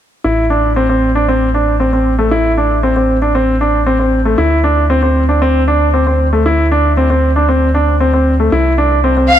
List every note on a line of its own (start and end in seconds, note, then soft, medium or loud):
0.24 4.36 A1 medium
0.24 0.44 E4 medium
0.50 0.70 D4 medium
0.76 0.86 C4 medium
0.89 1.09 C4 medium
1.15 1.25 D4 medium
1.28 1.48 C4 medium
1.54 1.74 D4 medium
1.80 1.89 C4 medium
1.93 2.12 C4 medium
2.19 2.28 A3 medium
2.31 2.51 E4 medium
2.57 2.77 D4 medium
2.83 2.93 C4 medium
2.96 3.16 C4 medium
3.22 3.32 D4 medium
3.35 3.54 C4 medium
3.61 3.80 D4 medium
3.86 3.96 C4 medium
3.99 4.19 C4 medium
4.25 4.35 A3 medium
4.38 8.50 D2 medium
4.38 4.57 E4 medium
4.64 4.83 D4 medium
4.90 5.00 C4 medium
5.03 5.22 C4 medium
5.29 5.38 D4 medium
5.42 5.61 C4 medium
5.68 5.87 D4 medium
5.94 6.03 C4 medium
6.07 6.26 C4 medium
6.33 6.42 A3 medium
6.46 6.65 E4 medium
6.71 6.91 D4 medium
6.97 7.07 C4 medium
7.10 7.29 C4 medium
7.36 7.46 D4 medium
7.49 7.68 C4 medium
7.74 7.94 D4 medium
8.00 8.10 C4 medium
8.13 8.33 C4 medium
8.40 8.49 A3 medium
8.52 9.39 C2 medium
8.52 8.72 E4 medium
8.78 8.97 D4 medium
9.04 9.14 C4 medium
9.17 9.36 C4 medium
9.31 9.39 F5 medium